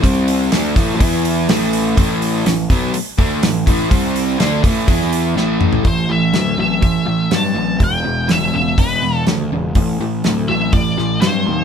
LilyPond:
<<
  \new Staff \with { instrumentName = "Lead electric guitar" } { \time 4/4 \key a \minor \tempo 4 = 123 r1 | r1 | r1 | c''8 e''4 e''4. a''4 |
g''4 e''8 e''8 b'4 r4 | r4. e''8 d''4 c''4 | }
  \new Staff \with { instrumentName = "Overdriven electric guitar" } { \clef bass \time 4/4 \key a \minor <c g c'>4 <d a d'>8 <a, e a>8 <e b e'>4 <a, e a>4 | <a, e a>4 <a, e>8 <b, fis b>8 r8 <d a d'>8 <a, e>8 <a, e a>8 | <c g c'>4 <d a d'>8 <a, e a>8 <e b e'>4 <a, e a>4 | <a, e>8 <a, e>8 <a, fis>8 <a, fis>8 <a, e>8 <a, e>8 <a, fis>8 <a, fis>8 |
<e, b,>8 <e, b,>8 <e, cis>8 <e, cis>8 <e, b,>8 <e, b,>8 <e, cis>8 <e, cis>8 | <a, e>8 <a, e>8 <a, fis>8 <a, fis>8 <a, e>8 <a, e>8 <a, fis>8 <a, fis>8 | }
  \new Staff \with { instrumentName = "Picked electric bass" } { \clef bass \time 4/4 \key a \minor c,4 d,8 a,,8 e,4 a,,4 | a,,4 a,,8 b,,8 r8 d,8 a,,8 a,,8 | c,4 d,8 a,,8 e,4 a,,4 | a,,8 a,,8 d,8 a,,8 a,,8 a,,8 g,8 a,,8 |
e,,8 e,,8 e,,8 e,,8 e,,8 e,,8 d,8 e,,8 | a,,8 a,,8 d,8 a,,8 a,,8 a,,8 g,8 dis,8 | }
  \new DrumStaff \with { instrumentName = "Drums" } \drummode { \time 4/4 <hho bd>8 hho8 <hho sn>8 <hho bd sn>8 <hho bd>8 hho8 <hho sn>8 hho8 | <hho bd>8 hho8 <hho sn>8 <hho bd sn>8 hho8 <hho bd>8 <hho sn>8 <hho bd>8 | <hho bd>8 hho8 <hho sn>8 <hho bd>8 <hho bd>16 sn16 hho8 sn8 toml16 tomfh16 | <hho bd>4 <hho sn>4 <hho bd>4 <hho sn>4 |
<hho bd>4 <hho sn>4 <hho bd>4 <hho sn>4 | <hho bd>4 <hho sn>4 <hho bd>8 sn8 <hho sn>4 | }
>>